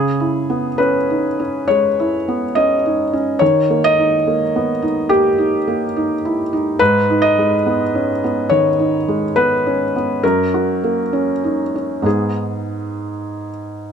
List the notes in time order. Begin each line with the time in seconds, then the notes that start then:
Already playing: C#3 G#4
0.20 E4
0.50 B3
0.78 C#4 B4
1.10 D#4
1.40 C#4
1.68 G#3 C#5
2.00 E4
2.28 B3
2.55 C#4 D#5
2.86 D#4
3.13 C#4
3.39 D#3 C#5
3.70 A#3
3.84 D#5
3.99 D#4
4.27 A#3
4.56 B3
4.82 D#4
5.09 A#3 G4
5.38 D#4
5.68 A#3
5.96 D#4
6.25 E4
6.53 D#4
6.79 G#2 B4
7.10 D#4
7.22 D#5
7.38 G#3
7.66 B3
7.95 C#4
8.24 B3
8.49 D#3 C#5
8.79 D#4
9.08 G#3
9.36 B3 B4
9.67 C#4
9.96 B3
10.23 F#2 A#4
10.54 F#4
10.84 A#3
11.13 C#4
11.44 D#4
11.76 C#4
12.02 G#2 B3 D#4 G#4